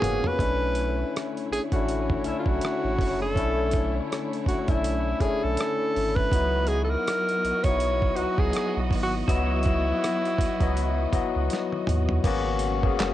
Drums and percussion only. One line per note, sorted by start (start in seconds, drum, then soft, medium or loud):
0.02 closed hi-hat medium
0.02 mid tom loud
0.24 floor tom medium
0.39 kick medium
0.39 closed hi-hat medium
0.75 closed hi-hat medium
1.16 cross-stick medium
1.16 closed hi-hat medium
1.37 closed hi-hat soft
1.53 closed hi-hat medium
1.72 kick medium
1.72 closed hi-hat soft
1.89 closed hi-hat medium
2.10 kick medium
2.24 closed hi-hat medium
2.46 kick medium
2.61 cross-stick loud
2.61 closed hi-hat medium
2.99 kick medium
2.99 open hi-hat medium
3.36 kick medium
3.36 closed hi-hat medium
3.71 kick medium
3.71 closed hi-hat medium
4.12 cross-stick medium
4.12 closed hi-hat medium
4.33 closed hi-hat soft
4.46 kick medium
4.46 closed hi-hat medium
4.68 kick medium
4.68 closed hi-hat medium
4.84 closed hi-hat medium
5.20 kick medium
5.20 closed hi-hat medium
5.57 cross-stick loud
5.57 closed hi-hat medium
5.96 open hi-hat medium
6.16 kick medium
6.32 kick medium
6.32 closed hi-hat medium
6.67 closed hi-hat medium
7.08 cross-stick medium
7.08 closed hi-hat medium
7.29 closed hi-hat soft
7.45 closed hi-hat medium
7.64 kick medium
7.64 closed hi-hat medium
7.80 closed hi-hat medium
8.02 kick medium
8.17 closed hi-hat medium
8.38 kick medium
8.53 cross-stick loud
8.53 closed hi-hat medium
8.91 kick medium
8.91 open hi-hat medium
9.28 kick loud
9.28 closed hi-hat medium
9.63 kick medium
9.63 closed hi-hat medium
10.04 cross-stick medium
10.04 closed hi-hat medium
10.25 closed hi-hat soft
10.39 kick medium
10.39 closed hi-hat medium
10.61 kick medium
10.61 closed hi-hat medium
10.77 closed hi-hat medium
11.13 kick medium
11.13 closed hi-hat medium
11.50 snare medium
11.50 closed hi-hat medium
11.72 high tom medium
11.87 closed hi-hat medium
11.87 mid tom medium
12.09 floor tom medium
12.24 kick medium
12.24 closed hi-hat medium
12.24 crash medium
12.59 closed hi-hat medium
12.83 kick loud
13.00 snare medium
13.00 clap medium
13.00 closed hi-hat medium